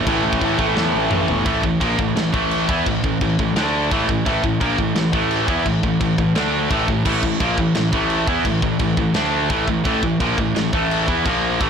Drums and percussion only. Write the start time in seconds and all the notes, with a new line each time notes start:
0.07 kick, china
0.33 kick
0.41 kick, china
0.59 kick
0.77 snare
1.11 mid tom
1.28 floor tom
1.46 kick, china
1.63 kick
1.81 kick, china
1.99 kick
2.17 snare, china
2.34 kick
2.51 china
2.69 kick
2.86 kick, china
3.04 kick
3.21 kick, china
3.39 kick
3.56 snare, china
3.91 kick, china
4.09 kick
4.26 kick, china
4.44 kick
4.61 kick, china
4.78 kick
4.96 snare, china
5.13 kick
5.31 china
5.48 kick
5.66 kick, china
5.83 kick
6.01 kick, china
6.18 kick
6.35 snare, china
6.71 kick, china
6.88 kick
7.06 kick, crash, china
7.23 kick
7.40 kick, china
7.58 kick
7.75 snare, china
7.93 kick
8.10 china
8.27 kick
8.45 kick, china
8.62 kick
8.79 kick, china
8.97 kick
9.14 snare, china
9.50 kick, china
9.68 kick
9.85 kick, china
10.03 kick
10.20 kick, china
10.38 kick
10.56 snare, china
10.73 kick
10.91 china
11.08 kick
11.26 kick, china
11.61 kick, china